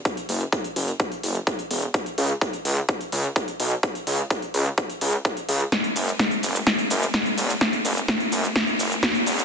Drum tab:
HH |xxoxxxoxxxoxxxox|xxoxxxoxxxoxxxox|xxoxxxoxxxoxxxox|xxoxxxoxxxoxxxox|
SH |----------------|----------------|----------------|x-xxx-xxx-xxx-xx|
SD |----------------|----------------|----------------|o---o---o---o---|
BD |o---o---o---o---|o---o---o---o---|o---o---o---o---|o---o---o---o---|

HH |xxoxxxoxxxoxxxox|
SH |x-xxx-xxx-xxx-xx|
SD |o---o---o---o---|
BD |o---o---o---o---|